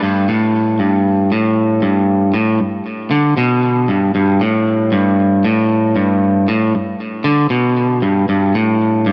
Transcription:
0.03 G2
0.28 A2
0.79 G2
1.32 A2
1.82 G2
2.34 A2
2.60 G2
3.11 D3
3.37 B2
3.88 G2
4.15 G2
4.41 A2
4.92 G2
5.45 A2
5.96 G2
6.48 A2
6.75 G2
7.24 D3
7.50 B2
8.02 G2
8.29 G2
8.54 A2
9.06 G2

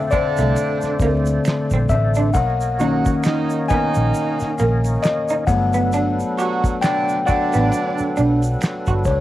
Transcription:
Already playing: D3 A3 C4 A4 C5 D5 E5 F5 G5
0.11 D3 C4 D4 D5, muted fingered electric bass stroke, kick, ride, shaker
0.36 C2 A3, snare, ride, shaker
0.56 ride, shaker
0.82 muted fingered electric bass stroke, snare, shaker
1.00 D2 D3 A3 A#3 C4, kick, ride, shaker
1.26 ride, shaker
1.45 finger snap, snare, clap, ride, shaker
1.70 A#1 C4, kick, shaker
1.89 A1 E5, muted clean electric guitar stroke, kick, ride, shaker
2.14 D4, ride, shaker
2.34 B1 A#3 A#4 C#5 D#5 F#5, kick, ride, shaker
2.61 ride, shaker
2.79 D#3 F#3 A#3 C#4 D#4 F#4, ride, shaker
3.05 kick, ride, shaker
3.24 D#3 D#4, finger snap, snare, clap, ride, shaker
3.50 shaker
3.68 D#3 B3 D#4 G#5, muted fingered electric bass stroke, kick, ride, shaker
3.94 A#1, ride, shaker
4.14 ride, shaker
4.40 muted fingered electric bass stroke, snare, shaker
4.59 A#1 A#3, ride, shaker
4.84 ride, shaker
5.02 D#5, finger snap, snare, clap, ride, shaker
5.29 D#4, shaker
5.47 G1 F#3 A3 B3 D4 A4 B4 F#5, muted clean electric guitar stroke, kick, open hi-hat, ride, shaker
5.73 B3, ride, shaker
5.92 D4, hi-hat pedal, ride, shaker
6.20 ride, shaker
6.37 F#3 F#4 G4, ride, shaker
6.64 kick, ride, shaker
6.81 D3 D4 G5, finger snap, muted clean electric guitar stroke, snare, clap, ride, shaker
7.09 ride, shaker
7.26 D3 D4 F#4 F#5, muted fingered electric bass stroke, kick, ride, shaker
7.52 A1 B3, snare, ride, shaker
7.72 ride, shaker
7.98 muted fingered electric bass stroke, shaker
8.17 B1 D4, ride, shaker
8.42 ride, shaker
8.61 finger snap, snare, clap, ride, shaker
8.87 G1 F#4, kick, ride, shaker
9.04 C#2 C#5, muted clean electric guitar stroke, kick, ride, shaker

